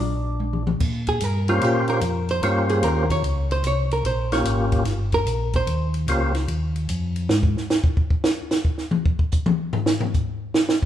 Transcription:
0.00 tonewheel organ A#1 D4
0.40 high tom
0.53 mid tom
0.67 mid tom
0.80 tonewheel organ A#2, kick, crash
1.07 hollow-body jazz guitar G#4, kick, ride
1.20 tonewheel organ G2, hollow-body jazz guitar A#4, hi-hat pedal, ride
1.48 tonewheel organ A#3 C#4 F4 G4 C5, hollow-body jazz guitar F4, ride
1.61 tonewheel organ A#2, hollow-body jazz guitar G4, ride
1.88 hollow-body jazz guitar A#4, ride
2.01 tonewheel organ F2, hi-hat pedal, ride
2.29 hollow-body jazz guitar C5, ride
2.42 tonewheel organ G2 A#3 C#4 F4 G4 C5, hollow-body jazz guitar C#5, ride
2.69 hollow-body jazz guitar G#4, ride
2.83 tonewheel organ D#2, hollow-body jazz guitar A#4, hi-hat pedal, ride
3.10 hollow-body jazz guitar C#5, kick, ride
3.22 tonewheel organ C#2, ride
3.51 hollow-body jazz guitar C5, ride
3.63 tonewheel organ C2, hollow-body jazz guitar C#5, hi-hat pedal, ride
3.91 hollow-body jazz guitar A#4, ride
4.03 tonewheel organ A#1, hollow-body jazz guitar C5, ride
4.32 tonewheel organ A#3 C#4 F4 G4, hollow-body jazz guitar C#5, snare, ride
4.44 tonewheel organ G#1, hi-hat pedal, ride
4.72 kick, ride
4.85 tonewheel organ G1, snare, ride
5.12 hollow-body jazz guitar A#4, kick, ride
5.26 tonewheel organ A#1, hi-hat pedal, ride
5.53 hollow-body jazz guitar C5, kick, ride
5.67 tonewheel organ D#2, ride
5.94 ride
6.07 tonewheel organ C#2 A#3 C#4 F4 G4 C5, hi-hat pedal, ride
6.35 snare, ride
6.48 tonewheel organ D#2, ride
6.76 ride
6.89 tonewheel organ F2, hi-hat pedal, ride
7.16 ride
7.29 tonewheel organ G#2, snare
7.43 kick
7.57 snare
7.70 snare, hi-hat pedal
7.84 kick
7.97 kick
8.10 kick
8.24 snare
8.51 snare, hi-hat pedal
8.65 kick
8.78 snare
8.91 mid tom
9.06 kick
9.19 kick
9.32 kick, hi-hat pedal
9.46 mid tom
9.73 floor tom
9.86 snare
10.00 floor tom
10.14 kick, hi-hat pedal
10.54 snare
10.69 snare

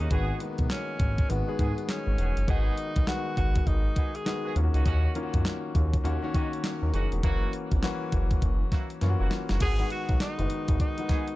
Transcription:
Already playing: grand piano D#3 A#3 C#4 F#4 G#4, tenor saxophone D#4
0.00 analog synth bass D#2, horn section F#4
0.11 analog synth bass G#1, grand piano D#3 G#3 B3 F#4, horn section B3 F#4 G#4, tenor saxophone B3, kick, closed hi-hat
0.40 grand piano D#3 G#3 A#3 F#4, closed hi-hat
0.48 grand piano B3
0.58 analog synth bass B1, kick, closed hi-hat
0.70 tenor saxophone C#4, snare, clap, closed hi-hat
0.99 analog synth bass G#1, kick, closed hi-hat
1.18 kick, closed hi-hat
1.29 analog synth bass G#1, grand piano D#3 G#3 B3 F#4, tenor saxophone B3, closed hi-hat
1.47 grand piano D#3 G#3 B3 G#4
1.59 analog synth bass G#2, horn section B3 F#4 G#4, kick, closed hi-hat
1.78 closed hi-hat
1.89 tenor saxophone C#4, snare, clap, closed hi-hat
2.07 analog synth bass G#1
2.18 analog synth bass E1, horn section B3 F#4 G#4, closed hi-hat
2.37 analog synth bass F#1, closed hi-hat
2.48 analog synth bass G#1, grand piano D#3 G#3 B3 F#4, horn section B3 F#4 G#4, tenor saxophone D#4, kick, closed hi-hat
2.78 closed hi-hat
2.96 analog synth bass B1, kick, closed hi-hat
3.07 grand piano D#3 G#3 B3 F#4, tenor saxophone F#4, snare, clap, closed hi-hat
3.37 analog synth bass G#1, tenor saxophone F#4, kick, closed hi-hat
3.55 kick, closed hi-hat
3.67 analog synth bass G#1, tenor saxophone D#4, kick, closed hi-hat
3.96 horn section B3 F#4 G#4, kick, closed hi-hat
4.15 tenor saxophone G#4, closed hi-hat
4.25 grand piano D#3 G#3 B3 F#4, snare, clap, closed hi-hat
4.44 horn section B3 F#4 G#4
4.55 analog synth bass D#2, grand piano D#3 A#3 C#4 F4, closed hi-hat
4.63 grand piano F#4
4.74 analog synth bass C#2, horn section C#4 D#4 F#4, closed hi-hat
4.85 analog synth bass D#2, horn section C#4 D#4 F#4, kick, closed hi-hat
5.15 grand piano D#3 A#3 C#4 F4, closed hi-hat
5.23 grand piano F#4
5.34 analog synth bass F#2, kick, closed hi-hat
5.45 snare, clap, closed hi-hat
5.75 analog synth bass D#2, kick, closed hi-hat
5.94 kick, closed hi-hat
6.04 analog synth bass D#2, grand piano D#3 A#3 C#4 F#4, closed hi-hat
6.22 grand piano D#3 A#3 C#4 F#4
6.34 analog synth bass D#3, horn section C#4 D#4 F#4, kick, closed hi-hat
6.53 closed hi-hat
6.64 grand piano C#5, snare, clap, closed hi-hat
6.82 analog synth bass D#2, grand piano A#4
6.93 analog synth bass F#1, horn section C#4 D#4 F#4, grand piano G#4, closed hi-hat
7.12 analog synth bass E1, grand piano F#4, closed hi-hat
7.23 analog synth bass F#1, grand piano E3 A#3 C#4 F#4, horn section A#3 E4 F#4, kick, closed hi-hat
7.53 closed hi-hat
7.71 analog synth bass G#1, kick, closed hi-hat
7.83 grand piano E3 A#3 C#4 F#4, snare, clap, closed hi-hat
8.12 analog synth bass F#1, kick, closed hi-hat
8.31 kick, closed hi-hat
8.42 analog synth bass F#1, kick, closed hi-hat
8.72 horn section A#3 E4 F#4, kick, snare, closed hi-hat
8.90 closed hi-hat
9.01 analog synth bass F#2, grand piano E3 A#3 C#4 F4, snare, closed hi-hat
9.09 grand piano F#4
9.20 analog synth bass F#1, horn section A#3 E4 F#4
9.31 snare, closed hi-hat
9.49 analog synth bass F#1, horn section A#3 E4 F#4, snare, closed hi-hat
9.60 analog synth bass G#1, horn section B3 F#4 G#4, tenor saxophone G#4, kick, closed hi-hat, crash
9.79 grand piano D#3 G#3 B3 F#4, closed hi-hat
9.90 tenor saxophone F#4, closed hi-hat
10.09 analog synth bass B1, kick, closed hi-hat
10.20 tenor saxophone D#4, snare, clap, closed hi-hat
10.38 analog synth bass F#1, grand piano D#3 G#3 B3 F#4, closed hi-hat
10.50 closed hi-hat
10.68 analog synth bass G#1, kick, closed hi-hat
10.80 tenor saxophone D#4, kick, closed hi-hat
10.98 grand piano D#3 G#3 B3 F#4, closed hi-hat
11.09 horn section B3 F#4 G#4, kick, snare, closed hi-hat
11.28 closed hi-hat

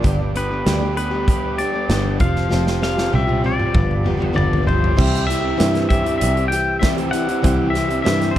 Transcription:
Already playing: tonewheel organ D5 D6
0.02 picked electric bass G1, steel-string acoustic guitar G2 D3 G3 B3 D4 G4, tonewheel organ B4 G5, kick, closed hi-hat
0.18 steel-string acoustic guitar G3 B3 D4 G4
0.34 steel-string acoustic guitar G3 B3 D4 G4, pedal steel guitar B4, closed hi-hat
0.51 steel-string acoustic guitar G3 B3 D4 G4
0.65 picked electric bass D2, steel-string acoustic guitar G2 D3 G3 B3 D4 G4, snare, closed hi-hat
0.81 steel-string acoustic guitar G3 B3 D4 G4
0.96 steel-string acoustic guitar G3 B3 D4 G4, pedal steel guitar B4, closed hi-hat
1.11 steel-string acoustic guitar G3 B3 D4 G4
1.28 overdriven electric guitar G4, kick, closed hi-hat
1.57 steel-string acoustic guitar G3 B3 D4 G4, pedal steel guitar D5, closed hi-hat
1.72 steel-string acoustic guitar G3 B3 D4 G4
1.88 picked electric bass G1, steel-string acoustic guitar G2 D3 G3 B3 D4 G4, snare, closed hi-hat
2.19 picked electric bass F1, steel-string acoustic guitar F3 C4 F4 G4, tonewheel organ F4 G4 C5 C6, pedal steel guitar F5, kick, closed hi-hat
2.36 snare
2.49 picked electric bass F1, steel-string acoustic guitar F3 C4 F4 G4, snare
2.64 steel-string acoustic guitar C4 F4 G4, snare
2.79 steel-string acoustic guitar F3 C4 F4 G4, overdriven electric guitar G3, snare
2.83 pedal steel guitar F5
2.96 steel-string acoustic guitar C4 F4 G4, snare
3.10 picked electric bass C2, steel-string acoustic guitar F3 C4 F4 G4, high tom
3.15 pedal steel guitar E5
3.26 steel-string acoustic guitar C4 F4 G4, high tom
3.43 steel-string acoustic guitar F3 C4 F4 G4, overdriven electric guitar G3, pedal steel guitar D5, high tom
3.58 steel-string acoustic guitar C4 F4 G4, mid tom
3.73 picked electric bass G1, steel-string acoustic guitar G2 D3 F3 B3 F4 G4, tonewheel organ D5 B5, kick, mid tom
3.91 mid tom
4.03 steel-string acoustic guitar F3 B3 F4 G4, mid tom
4.17 steel-string acoustic guitar F3 B3 F4 G4
4.22 mid tom
4.33 picked electric bass G1, steel-string acoustic guitar G2 D3 F3 B3 F4 G4, overdriven electric guitar G3, pedal steel guitar D5
4.38 mid tom
4.53 floor tom
4.63 picked electric bass G1, steel-string acoustic guitar F3 F4 G4, pedal steel guitar C5
4.69 floor tom
4.84 floor tom
4.95 picked electric bass C2, steel-string acoustic guitar C3 E3 C4 E4 G4, overdriven electric guitar G3, grand piano E4 G4 C5 E5, tonewheel organ G4 E5 E6, kick
5.00 crash
5.15 closed hi-hat
5.25 steel-string acoustic guitar E3 C4 E4, overdriven electric guitar G3, pedal steel guitar E5
5.29 steel-string acoustic guitar G4, snare, closed hi-hat
5.41 steel-string acoustic guitar C4 E4 G4
5.57 picked electric bass G2, steel-string acoustic guitar C3 E3 C4 E4 G4, overdriven electric guitar G3, grand piano E4 G4 C5 E5, snare, closed hi-hat
5.73 overdriven electric guitar G3 E4 G4, snare, closed hi-hat
5.87 steel-string acoustic guitar E3 C4 E4 G4, overdriven electric guitar G3, grand piano E4 G4 C5 E5, pedal steel guitar E5, kick, closed hi-hat
6.03 overdriven electric guitar G3, steel-string acoustic guitar C4 E4 G4, closed hi-hat
6.18 grand piano E4 G4 C5 D5, pedal steel guitar E5, closed hi-hat
6.22 picked electric bass C2
6.35 steel-string acoustic guitar C4 E4 G4, closed hi-hat
6.39 overdriven electric guitar G3
6.48 steel-string acoustic guitar E3 C4, pedal steel guitar G5, closed hi-hat
6.53 steel-string acoustic guitar E4 G4, muted overdriven electric guitar stroke
6.79 steel-string acoustic guitar C3 E3 C4 E4 G4, overdriven electric guitar G3, grand piano E4 G4 C5 E5, pedal steel guitar E5, kick, snare, closed hi-hat
6.97 overdriven electric guitar G3 E4 G4, closed hi-hat
7.11 steel-string acoustic guitar E3 C4 E4 G4, overdriven electric guitar G3, pedal steel guitar F#5, closed hi-hat
7.27 steel-string acoustic guitar C4 E4 G4, closed hi-hat
7.31 overdriven electric guitar G3
7.42 picked electric bass C2, steel-string acoustic guitar C3 E3 C4 E4 G4, overdriven electric guitar G3, grand piano E4 G4 C5 E5, kick, closed hi-hat
7.70 steel-string acoustic guitar E3 C4, pedal steel guitar E5
7.74 overdriven electric guitar G3, steel-string acoustic guitar E4 G4, snare, closed hi-hat
7.88 steel-string acoustic guitar C4 E4 G4, closed hi-hat
8.02 steel-string acoustic guitar C3 E3 C4 E4 G4, overdriven electric guitar G3, grand piano E4 G4 C5 E5, pedal steel guitar E5
8.06 picked electric bass G2, snare, closed hi-hat
8.19 overdriven electric guitar G3 E4 G4, snare, closed hi-hat
8.31 steel-string acoustic guitar E3 C4, grand piano E4 C5, pedal steel guitar C5
8.35 grand piano G4 E5

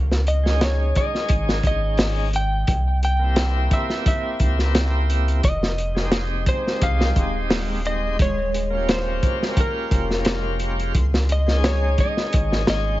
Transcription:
Already playing: sub bass C#2
0.11 snare
0.27 electric slide guitar D#5, closed hi-hat
0.43 tonewheel organ G#3 C#4, snare
0.48 tonewheel organ D#4 G#4
0.61 electric slide guitar C#5, snare, closed hi-hat
0.95 electric slide guitar D#5, kick, closed hi-hat
1.15 snare
1.28 sub bass G#1, kick, closed hi-hat
1.49 snare
1.63 sub bass G#1, electric slide guitar D#5, kick, closed hi-hat
1.97 snare, open hi-hat
2.33 electric slide guitar G5, closed hi-hat
2.67 sub bass C2, kick, closed hi-hat
3.03 electric slide guitar G5, closed hi-hat
3.19 tonewheel organ A#3 C4
3.24 tonewheel organ E4 G4
3.36 snare, closed hi-hat
3.71 electric slide guitar E5, kick, closed hi-hat
3.90 snare
4.06 electric slide guitar E5, kick, closed hi-hat
4.40 sub bass C#2, kick, closed hi-hat
4.59 snare
4.75 snare, closed hi-hat
5.10 closed hi-hat
5.28 closed hi-hat
5.43 sub bass F1, synth texture G#3 C6, electric slide guitar D#5, kick, closed hi-hat
5.63 snare
5.78 closed hi-hat
5.95 tonewheel organ G#3 C4, snare
5.99 tonewheel organ D#4 G4
6.12 snare, closed hi-hat
6.46 electric slide guitar C5, kick, closed hi-hat
6.67 snare
6.81 sub bass C2, electric slide guitar F5, kick, closed hi-hat
7.01 snare
7.16 sub bass D#1, kick, closed hi-hat
7.50 snare, open hi-hat
7.84 tonewheel organ G#3 C4 D#4 G4, electric slide guitar D#5, closed hi-hat
8.19 sub bass D#1, electric slide guitar C#5, kick, closed hi-hat
8.54 closed hi-hat
8.70 tonewheel organ A#3 C#4
8.75 tonewheel organ F4 G4
8.89 electric slide guitar C5, snare, closed hi-hat
9.23 kick, closed hi-hat
9.43 snare
9.57 electric slide guitar A#4, kick, closed hi-hat
9.91 sub bass F1, kick, closed hi-hat
10.11 snare
10.25 snare, closed hi-hat
10.60 closed hi-hat
10.80 closed hi-hat
10.95 sub bass C#2, kick, closed hi-hat
11.14 snare
11.29 electric slide guitar D#5, closed hi-hat
11.47 tonewheel organ G#3 C#4, snare
11.51 tonewheel organ D#4 G#4
11.64 electric slide guitar C#5, snare, closed hi-hat
11.98 electric slide guitar D#5, kick, closed hi-hat
12.17 snare
12.33 sub bass G#1, kick, closed hi-hat
12.52 snare
12.67 sub bass G#1, electric slide guitar D#5, snare, closed hi-hat

